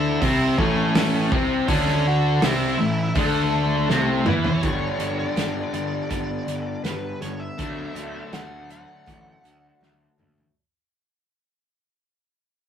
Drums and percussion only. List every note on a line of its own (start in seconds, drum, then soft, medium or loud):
0.22 kick medium
0.22 open hi-hat medium
0.58 kick loud
0.95 snare loud
0.95 open hi-hat medium
1.32 kick loud
1.68 kick loud
1.68 open hi-hat medium
1.88 snare soft
2.42 snare loud
2.42 open hi-hat medium
3.15 kick loud
3.15 open hi-hat medium
3.90 snare medium
4.26 mid tom loud
4.44 floor tom medium
4.63 kick loud
4.63 closed hi-hat medium
5.00 closed hi-hat medium
5.37 snare medium
5.37 closed hi-hat medium
5.74 closed hi-hat soft
6.10 kick medium
6.10 closed hi-hat medium
6.48 closed hi-hat soft
6.85 snare loud
6.85 closed hi-hat medium
7.22 snare soft
7.22 closed hi-hat medium
7.59 kick medium
7.59 closed hi-hat medium
7.96 closed hi-hat medium
8.33 snare medium
8.33 closed hi-hat medium
8.70 closed hi-hat soft
9.08 kick medium
9.08 closed hi-hat medium
9.45 closed hi-hat medium
9.83 snare soft
10.20 mid tom medium
10.38 floor tom medium